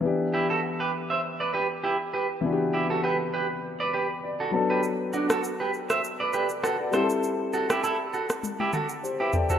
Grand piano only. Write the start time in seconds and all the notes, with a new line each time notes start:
0.01 E3 B3 D4
0.06 G4
2.41 E3 B3 D4
2.46 F#4
2.52 G4
4.24 D5
4.51 F#3 B3 D4 A5
4.56 A4
6.34 A4 D5
6.63 B4 F#5
6.80 A4 D5
6.91 G3 C4 E4
6.96 G4
7.03 A4
9.03 G4 C5
9.20 B4 E5
9.33 A4 D5 G5
9.50 G4 C5